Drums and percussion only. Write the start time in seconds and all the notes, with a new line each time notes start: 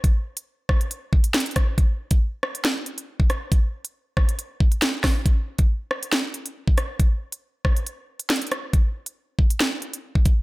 0.04 kick, closed hi-hat
0.37 closed hi-hat
0.69 kick, cross-stick
0.81 closed hi-hat
0.91 closed hi-hat
1.13 kick
1.24 closed hi-hat
1.34 snare, closed hi-hat
1.40 closed hi-hat
1.46 closed hi-hat
1.51 closed hi-hat
1.56 kick, cross-stick, closed hi-hat
1.78 kick, closed hi-hat
2.11 kick, closed hi-hat
2.43 cross-stick
2.55 closed hi-hat
2.65 snare
2.86 closed hi-hat
2.98 closed hi-hat
3.20 kick
3.30 cross-stick, closed hi-hat
3.52 kick, closed hi-hat
3.85 closed hi-hat
4.17 kick, cross-stick
4.29 closed hi-hat
4.39 closed hi-hat
4.60 kick
4.72 closed hi-hat
4.82 snare, closed hi-hat
5.04 kick, cross-stick, snare, open hi-hat
5.26 kick, closed hi-hat
5.58 kick, closed hi-hat
5.91 cross-stick
6.03 closed hi-hat
6.12 snare
6.34 closed hi-hat
6.46 closed hi-hat
6.68 kick
6.78 cross-stick, closed hi-hat
7.00 kick, closed hi-hat
7.32 closed hi-hat
7.65 kick, cross-stick
7.77 closed hi-hat
7.87 closed hi-hat
8.20 closed hi-hat
8.30 snare, closed hi-hat
8.36 closed hi-hat
8.42 closed hi-hat
8.47 closed hi-hat
8.51 cross-stick, closed hi-hat
8.73 kick, closed hi-hat
9.06 closed hi-hat
9.39 kick
9.50 closed hi-hat
9.60 snare
9.82 closed hi-hat
9.93 closed hi-hat
10.15 kick
10.25 kick, closed hi-hat